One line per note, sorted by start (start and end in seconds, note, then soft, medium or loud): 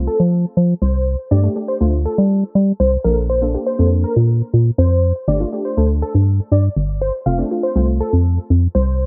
0.00 0.51 A3 medium
0.00 0.51 C4 medium
0.00 0.51 F4 medium
0.07 0.19 A4 medium
0.20 0.45 F3 medium
0.57 0.74 F3 medium
0.82 1.16 C2 loud
0.82 1.17 C5 medium
1.31 1.48 G2 loud
1.31 1.40 A3 medium
1.31 1.40 D4 medium
1.31 1.40 G4 medium
1.31 1.42 D5 loud
1.43 1.52 A3 medium
1.43 1.52 D4 medium
1.43 1.52 G4 loud
1.56 1.73 A3 medium
1.56 1.73 D4 medium
1.56 1.73 G4 medium
1.68 1.91 C5 medium
1.80 2.07 D2 medium
1.80 2.49 A3 medium
1.80 2.49 D4 medium
1.80 2.49 F4 medium
2.05 2.17 A4 medium
2.18 2.44 G3 medium
2.55 2.72 G3 medium
2.80 2.97 C2 loud
2.80 2.91 C5 medium
3.04 3.56 A#1 loud
3.04 3.34 A#3 medium
3.04 3.35 D4 medium
3.04 3.35 A4 medium
3.04 3.16 A#4 medium
3.30 3.41 C5 loud
3.42 3.50 A#3 medium
3.42 3.51 D4 medium
3.42 3.51 A4 loud
3.54 3.71 A#3 medium
3.54 3.71 D4 medium
3.54 3.72 G4 medium
3.67 3.89 C5 medium
3.79 4.05 F2 medium
3.79 4.47 A#3 medium
3.79 4.47 D4 medium
3.79 4.47 A4 medium
4.04 4.15 A#4 medium
4.16 4.42 A#2 medium
4.54 4.71 A#2 medium
4.78 5.12 F2 loud
4.78 5.13 C5 medium
5.28 5.45 G1 loud
5.28 5.37 A3 medium
5.28 5.37 D4 medium
5.28 5.37 G4 medium
5.28 5.39 D5 loud
5.40 5.49 A3 medium
5.40 5.49 D4 medium
5.40 5.49 F4 loud
5.53 5.70 A3 medium
5.53 5.70 D4 medium
5.53 5.70 G4 medium
5.65 5.87 C5 medium
5.77 6.03 D2 medium
5.77 6.46 A3 medium
5.77 6.46 D4 medium
5.77 6.46 A4 medium
6.02 6.14 A4 medium
6.15 6.40 G2 medium
6.52 6.69 G2 medium
6.52 6.63 D5 medium
6.77 7.11 G1 loud
7.02 7.13 C5 medium
7.26 7.43 F1 loud
7.26 7.35 A3 medium
7.26 7.35 C4 medium
7.26 7.35 F4 medium
7.26 7.37 F5 medium
7.39 7.47 A3 medium
7.39 7.47 C4 medium
7.39 7.47 D4 medium
7.51 7.68 A3 medium
7.51 7.68 C4 medium
7.51 7.68 F4 medium
7.63 7.86 C5 medium
7.76 8.01 C2 medium
7.76 8.44 A3 medium
7.76 8.44 C4 medium
7.76 8.44 F4 medium
8.01 8.12 A4 medium
8.13 8.39 F2 medium
8.50 8.67 F2 loud
8.75 9.06 C2 loud
8.75 9.06 C5 medium